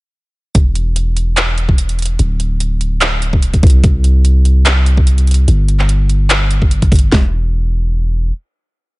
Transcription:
0.55 2.17 E1 medium
0.55 kick loud
0.55 closed hi-hat medium
0.75 closed hi-hat medium
0.96 closed hi-hat medium
1.17 closed hi-hat medium
1.37 clap loud
1.37 closed hi-hat medium
1.58 closed hi-hat medium
1.69 kick medium
1.78 closed hi-hat medium
1.89 closed hi-hat medium
1.99 closed hi-hat medium
2.02 closed hi-hat medium
2.06 closed hi-hat medium
2.19 3.61 D1 medium
2.19 closed hi-hat medium
2.40 closed hi-hat medium
2.60 closed hi-hat medium
2.81 closed hi-hat medium
3.01 clap loud
3.01 closed hi-hat medium
3.22 closed hi-hat medium
3.33 kick medium
3.42 closed hi-hat medium
3.54 kick medium
3.54 closed hi-hat medium
3.63 5.46 C2 medium
3.63 kick loud
3.63 closed hi-hat soft
3.67 closed hi-hat medium
3.70 closed hi-hat medium
3.84 kick loud
3.84 closed hi-hat medium
4.04 closed hi-hat medium
4.25 closed hi-hat medium
4.45 closed hi-hat medium
4.66 clap loud
4.66 closed hi-hat medium
4.86 closed hi-hat medium
4.97 kick medium
5.07 closed hi-hat medium
5.18 closed hi-hat medium
5.27 closed hi-hat soft
5.31 closed hi-hat medium
5.34 closed hi-hat medium
5.48 7.10 G1 medium
5.48 closed hi-hat medium
5.68 closed hi-hat medium
5.79 clap soft
5.89 closed hi-hat medium
6.09 closed hi-hat medium
6.30 clap loud
6.30 closed hi-hat medium
6.51 closed hi-hat medium
6.62 kick medium
6.71 closed hi-hat medium
6.82 kick medium
6.82 closed hi-hat medium
6.92 kick loud
6.92 closed hi-hat medium
6.92 open hi-hat medium
6.99 closed hi-hat medium
7.12 8.32 E1 medium
7.12 kick loud
7.12 snare loud

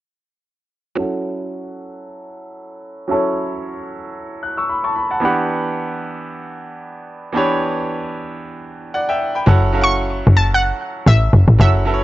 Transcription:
0.95 3.05 F#3 medium
0.95 3.05 C#4 medium
0.95 3.06 E4 medium
0.95 3.07 A4 medium
1.00 3.07 F#5 medium
3.08 5.17 F#3 medium
3.08 5.18 C#4 medium
3.08 5.18 E4 medium
3.08 5.19 A4 medium
3.13 5.20 C#5 medium
4.43 4.57 F#6 medium
4.57 4.69 C#6 medium
4.57 4.69 E6 medium
4.69 4.83 B5 medium
4.84 4.96 A5 medium
4.84 4.95 C#6 medium
4.96 5.10 B5 medium
5.11 5.23 F#5 medium
5.11 5.36 A5 medium
5.20 7.30 E3 medium
5.20 7.30 B3 medium
5.20 7.31 D4 medium
5.20 7.31 G4 medium
5.25 7.32 F#5 medium
7.32 9.16 E3 medium
7.32 9.16 B3 medium
7.32 9.17 D4 medium
7.32 9.18 G4 medium
7.37 8.92 C#5 medium
8.94 9.08 D5 medium
8.94 9.08 F#5 medium
9.09 9.34 E5 medium
9.09 9.34 G5 medium
9.35 9.61 G5 medium
9.35 9.60 B5 medium
9.46 10.23 F#1 loud
9.46 9.68 F#3 medium
9.46 9.69 C#4 medium
9.46 9.69 E4 medium
9.46 9.69 A4 medium
9.46 9.70 F#5 loud
9.73 10.59 F#3 medium
9.73 10.59 C#4 medium
9.73 10.59 E4 medium
9.73 10.60 A4 medium
9.73 9.81 F5 medium
9.81 10.63 F#5 medium
9.81 10.38 C#6 loud
10.27 10.72 F#1 loud
10.37 10.54 A5 medium
10.54 11.09 F#5 loud
11.06 11.29 A1 loud
11.06 11.59 E5 loud
11.33 11.46 F#1 loud
11.48 11.58 A1 medium
11.58 12.04 F#1 loud
11.58 11.81 F#3 medium
11.58 11.81 C#4 medium
11.58 11.81 E4 medium
11.58 11.82 A4 medium
11.58 12.04 E5 medium
11.58 11.82 F#5 medium
11.85 12.04 F#3 medium
11.85 12.04 C#4 medium
11.85 12.04 E4 medium
11.85 12.04 A4 medium
11.85 11.94 B4 medium
11.94 12.04 C#5 medium

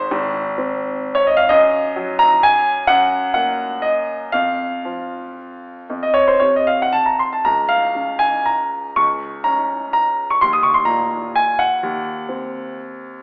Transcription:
0.00 0.66 G#2 medium
0.00 1.15 C5 loud
0.11 1.46 G#1 medium
0.58 1.50 C4 medium
1.15 1.26 C#5 medium
1.27 1.38 D#5 medium
1.37 1.49 F5 medium
1.49 2.84 F#2 medium
1.49 2.19 D#5 loud
1.96 3.42 F#3 soft
2.19 2.42 A#5 loud
2.43 2.88 G#5 loud
2.87 4.28 F#2 medium
2.87 3.32 F#5 loud
3.34 4.33 A#3 soft
3.34 3.82 F#5 medium
3.82 4.32 D#5 medium
4.32 5.85 F2 medium
4.32 6.01 F5 medium
4.85 5.89 F3 soft
5.90 7.42 F2 soft
6.03 6.15 D#5 medium
6.14 6.27 C#5 medium
6.28 6.40 C5 medium
6.40 7.46 C3 soft
6.40 6.53 C#5 medium
6.56 6.68 D#5 medium
6.67 6.80 F5 medium
6.82 6.94 F#5 medium
6.93 7.06 A5 medium
7.06 7.19 A#5 medium
7.19 7.33 C6 medium
7.33 7.45 A5 medium
7.45 8.93 C#2 soft
7.45 7.70 A#5 medium
7.69 8.20 F5 medium
7.95 9.54 C#3 soft
8.19 8.45 G#5 medium
8.46 8.96 A#5 medium
8.96 10.37 C#2 soft
8.96 9.45 C#6 medium
9.44 10.42 C#4 soft
9.44 9.92 A#5 medium
9.93 10.30 A#5 medium
10.30 10.42 C#6 medium
10.41 11.79 D#2 soft
10.41 10.53 C6 medium
10.53 10.64 D#6 medium
10.63 10.75 C#6 medium
10.74 10.87 C6 medium
10.85 12.37 A#2 soft
10.85 11.35 A#5 medium
11.36 11.60 G#5 medium
11.59 12.76 F#5 medium
11.83 13.18 D#2 medium
12.29 13.22 C4 soft

